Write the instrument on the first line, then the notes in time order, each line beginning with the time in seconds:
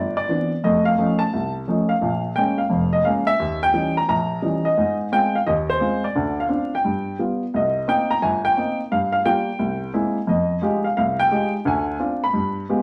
grand piano
Already playing: G1 D5
0.17 D5
0.29 E3 B3 C4 D4
0.64 F2 A3 D#5
0.85 F5
0.98 F3 A3 C#4 D#4
1.19 A5
1.33 C2
1.68 F3 A3 C#4 D#4
1.89 F5
2.01 A#1 A#2
2.36 G#3 A#3 C#4 G5
2.58 F5
2.70 F1 F2
2.93 D#5
3.05 G#3 A#3 C#4 F5
3.27 E5
3.40 D#2
3.63 G5
3.73 E3 G3 C#4 D#4
3.97 A#5
4.08 A#1 A#5
4.42 E3 G3 C#4 D#4
4.65 D#5
4.77 G#2
5.12 G#3 C4 F4 G5
5.35 F5
5.47 D#2 D#3 D#5
5.70 C5
5.80 G#3 C4 F4
6.04 D5
6.15 D2 D3
6.40 F5
6.49 C4 D4 F4
6.75 G5
6.84 G2
7.19 G3 B3 F4
7.54 C2 D#5
7.88 A#3 C4 D#4 G5
8.11 A#5
8.22 G1 G#5
8.45 G5
8.57 A#3 C4 D#4
8.92 G2 F5
9.12 F5
9.26 G3 A#3 F4 G5
9.59 C2
9.94 G#3 A#3 C4 E4
10.27 F2 D#5
10.62 G#3 D#4 F4 G4
10.84 F5
10.97 C2 F5
11.20 G5
11.31 G#3 D#4 F4 G4
11.65 D2 D3 G#5
12.00 C4 D4 F4
12.24 B5
12.33 G2
12.69 G#3 B3 F4 G4